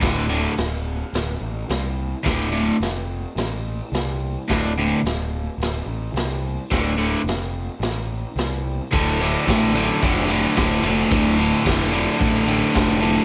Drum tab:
CC |x-------|--------|--------|--------|
RD |--------|--------|--------|--------|
HH |o-o-o-o-|o-o-o-o-|o-o-o-o-|o-o-o-o-|
SD |o-o-o-o-|o-o-o-o-|o-o-o-o-|o-o-o-o-|
BD |o-------|o-------|o-------|o-------|

CC |x-------|--------|
RD |-xxxxxxx|xxxxxxxx|
HH |--------|--------|
SD |--o---o-|--o---o-|
BD |o-o-o-o-|o-o-o-o-|